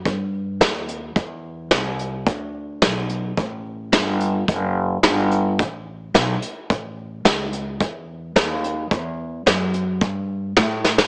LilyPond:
<<
  \new Staff \with { instrumentName = "Upright bass" } { \clef bass \time 4/4 \key d \major \tempo 4 = 108 g,4 ees,4 e,4 c,4 | d,4 b,,4 a,,4 g,,4 | fis,,4 g,,4 a,,4 b,,8 r8 | a,,4 cis,4 e,4 ees,4 |
e,4 fis,4 g,4 a,4 | }
  \new DrumStaff \with { instrumentName = "Drums" } \drummode { \time 4/4 <hh bd>4 <hh sn>8 hh8 <hh bd>4 <hh sn>8 hh8 | <hh bd>4 <hh sn>8 hh8 <hh bd>4 <hh sn>8 hh8 | <hh bd>4 <hh sn>8 hh8 <hh bd>4 <hh sn>8 hh8 | <hh bd>4 <hh sn>8 hh8 <hh bd>4 <hh sn>8 hh8 |
<hh bd>4 <hh sn>8 hh8 <hh bd>4 <hh sn>8 sn16 sn16 | }
>>